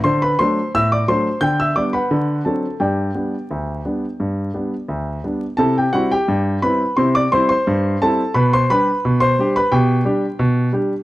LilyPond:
<<
  \new Staff \with { instrumentName = "Grand piano" } { \time 2/4 \key g \major \tempo 4 = 87 <c'' c'''>16 <b' b''>16 <c'' c'''>8 <e'' e'''>16 <d'' d'''>16 <c'' c'''>8 | <g'' g'''>16 <e'' e'''>16 <d'' d'''>16 <b' fis'' b''>8. <a' a''>8 | <g' d'' g''>2~ | <g' d'' g''>4. r8 |
<a' a''>16 <g' g''>16 <fis' fis''>16 <g' g''>8. <b' b''>8 | <c'' c'''>16 <d'' d'''>16 <c'' c'''>16 <c'' c'''>8. <a' a''>8 | <b' b''>16 <c'' c'''>16 <b' b''>8. <c'' c'''>8 <b' b''>16 | <g' g''>4. r8 | }
  \new Staff \with { instrumentName = "Grand piano" } { \time 2/4 \key g \major d8 <fis a d'>8 a,8 <fis a d'>8 | d8 <g b d'>8 d8 <fis c' d'>8 | g,8 <g b d'>8 d,8 <g b d'>8 | g,8 <g b d'>8 d,8 <g b d'>8 |
<c e'>8 <g c' e'>8 g,8 <g c' e'>8 | <c e'>8 <g c' e'>8 g,8 <g c' e'>8 | b,8 <g d' g'>8 b,8 <g d' g'>8 | b,8 <g d' g'>8 b,8 <g d' g'>8 | }
>>